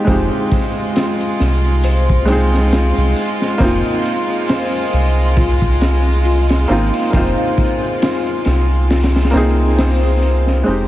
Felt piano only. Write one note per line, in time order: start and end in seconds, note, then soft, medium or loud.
0.00 0.05 G#3 medium
0.00 0.07 C4 medium
0.00 0.09 D#4 medium
0.00 0.11 G4 medium
0.05 2.22 G#3 medium
0.05 2.23 C4 medium
0.09 2.24 D#4 medium
0.09 2.25 G4 medium
2.25 3.54 G#3 medium
2.25 3.56 C4 medium
2.30 3.57 D#4 medium
2.30 3.58 G#4 loud
3.58 6.63 A#3 loud
3.58 6.64 C4 medium
3.62 6.65 D#4 medium
3.62 6.67 F4 loud
6.68 7.08 A#3 medium
6.68 7.09 C4 medium
6.68 7.09 D#4 medium
6.68 7.10 F4 loud
7.10 9.28 A#3 medium
7.10 9.29 C4 medium
7.15 9.30 D#4 medium
7.15 9.31 F4 medium
9.31 10.60 A#3 loud
9.31 10.61 C4 medium
9.35 10.62 D#4 medium
9.35 10.63 G#4 loud
10.64 10.88 G#3 medium
10.64 10.88 C4 medium
10.68 10.88 D#4 medium
10.68 10.88 G4 medium